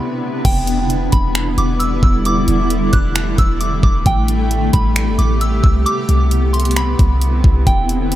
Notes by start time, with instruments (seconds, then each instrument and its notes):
Already playing: ambient pad C3 B3 D4 E4, synth bell B5
0.45 808-style bass E1, ambient pad D3 G3 B3 E4, synth bell G5, kick, closed hi-hat, crash
0.67 closed hi-hat
0.90 closed hi-hat
1.12 808-style bass E1, synth bell B5, kick, closed hi-hat
1.35 finger snap, closed hi-hat
1.58 808-style bass E1, synth bell D6, closed hi-hat
1.79 synth bell E6, closed hi-hat
2.03 808-style bass E1, synth bell E6, kick
2.25 ambient pad A3, synth bell D6, closed hi-hat
2.48 808-style bass E1, closed hi-hat
2.70 closed hi-hat
2.93 808-style bass E1, synth bell F#6, kick, closed hi-hat
3.15 finger snap, closed hi-hat
3.38 808-style bass E1, synth bell E6, kick, closed hi-hat
3.61 synth bell D6, closed hi-hat
3.83 808-style bass E1, synth bell D6, kick
4.06 808-style bass A1, ambient pad C3 B3 G4, synth bell G5, kick, closed hi-hat
4.28 closed hi-hat
4.51 closed hi-hat
4.73 808-style bass A1, synth bell B5, kick, closed hi-hat
4.96 finger snap, closed hi-hat
5.07 808-style bass G1
5.19 808-style bass A1, synth bell D6, closed hi-hat
5.41 synth bell E6, closed hi-hat
5.63 808-style bass C2, synth bell E6, kick
5.86 ambient pad D3 C4 E4, synth bell D6, closed hi-hat
6.09 808-style bass C2, closed hi-hat
6.31 closed hi-hat
6.53 synth bell C6, closed hi-hat
6.60 closed hi-hat
6.65 closed hi-hat
6.71 closed hi-hat
6.76 synth bell B5, finger snap, closed hi-hat
6.99 808-style bass C2, kick, closed hi-hat
7.21 closed hi-hat
7.44 808-style bass C2, kick
7.67 808-style bass E1, ambient pad D3 G3, synth bell G5, kick, closed hi-hat
7.89 closed hi-hat
8.12 closed hi-hat